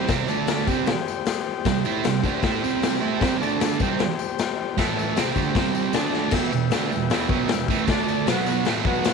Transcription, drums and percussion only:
0.08 kick, snare, open hi-hat, tambourine
0.28 tambourine
0.47 snare, open hi-hat, tambourine
0.67 kick, tambourine
0.86 snare, open hi-hat
1.08 tambourine
1.25 snare, open hi-hat, tambourine
1.65 kick, snare, open hi-hat, tambourine
1.85 tambourine
2.04 snare, open hi-hat, tambourine
2.24 kick, tambourine
2.42 kick, snare, open hi-hat
2.64 tambourine
2.82 snare, open hi-hat, tambourine
3.21 kick, snare, open hi-hat, tambourine
3.43 tambourine
3.60 snare, open hi-hat, tambourine
3.80 kick, tambourine
3.99 snare, open hi-hat
4.19 tambourine
4.38 snare, open hi-hat, tambourine
4.78 kick, snare, open hi-hat, tambourine
4.99 tambourine
5.16 snare, open hi-hat, tambourine
5.36 kick, tambourine
5.55 kick, snare, open hi-hat
5.75 tambourine
5.93 snare, open hi-hat, tambourine
6.14 snare
6.31 kick, snare, crash, tambourine
6.52 tambourine
6.71 snare, open hi-hat, tambourine
6.92 tambourine
7.10 snare, open hi-hat, tambourine
7.29 kick, tambourine
7.43 tambourine
7.48 snare, open hi-hat
7.52 tambourine
7.68 kick, tambourine
7.80 tambourine
7.87 kick, snare, open hi-hat, tambourine
8.08 tambourine
8.27 snare, open hi-hat, tambourine
8.46 tambourine
8.65 snare, open hi-hat, tambourine
8.85 kick, tambourine
8.95 tambourine
9.04 snare, open hi-hat, tambourine

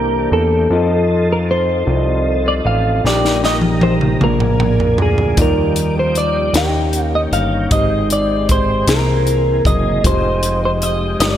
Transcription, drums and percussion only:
3.06 snare
3.25 snare
3.44 snare
3.61 high tom
3.81 high tom
4.01 mid tom
4.21 mid tom
4.40 mid tom
4.60 mid tom
4.80 floor tom
4.98 floor tom
5.18 floor tom
5.37 kick, closed hi-hat
5.76 closed hi-hat
6.15 closed hi-hat
6.54 snare, closed hi-hat
6.93 closed hi-hat
7.33 closed hi-hat
7.71 kick, closed hi-hat
8.10 closed hi-hat
8.49 kick, closed hi-hat
8.88 snare, closed hi-hat
9.27 closed hi-hat
9.65 kick, closed hi-hat
10.04 kick, closed hi-hat
10.43 closed hi-hat
10.82 closed hi-hat
11.20 snare, closed hi-hat

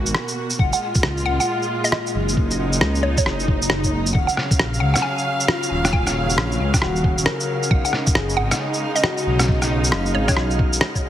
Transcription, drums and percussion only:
0.06 shaker
0.14 cross-stick
0.28 shaker
0.50 shaker
0.59 kick
0.73 shaker
0.95 kick, shaker
1.03 cross-stick
1.17 shaker
1.40 shaker
1.62 shaker
1.84 shaker
1.92 cross-stick
2.06 shaker
2.29 shaker
2.37 kick
2.51 shaker
2.73 shaker
2.81 cross-stick
2.95 shaker
3.17 kick, shaker
3.26 cross-stick
3.40 shaker
3.48 kick
3.62 shaker
3.70 cross-stick
3.84 kick, shaker
4.06 shaker
4.15 kick
4.29 shaker
4.37 cross-stick
4.51 kick, shaker
4.59 cross-stick
4.74 shaker
4.96 cross-stick, shaker
5.18 shaker
5.40 shaker
5.48 cross-stick
5.63 shaker
5.85 cross-stick, shaker
5.93 kick
6.07 cross-stick, shaker
6.30 shaker
6.38 cross-stick
6.52 shaker
6.74 kick, cross-stick, shaker
6.82 cross-stick
6.96 shaker
7.04 kick
7.18 shaker
7.26 cross-stick
7.40 shaker
7.63 shaker
7.71 kick
7.85 shaker
7.93 cross-stick
8.07 kick, shaker
8.15 cross-stick
8.29 shaker
8.51 cross-stick, shaker
8.74 shaker
8.96 shaker
9.04 cross-stick
9.17 shaker
9.39 cross-stick, shaker
9.48 kick
9.62 cross-stick, shaker
9.84 shaker
9.92 cross-stick
10.06 shaker
10.28 kick, cross-stick, shaker
10.37 cross-stick
10.50 shaker
10.59 kick
10.73 shaker
10.81 cross-stick
10.95 kick, shaker

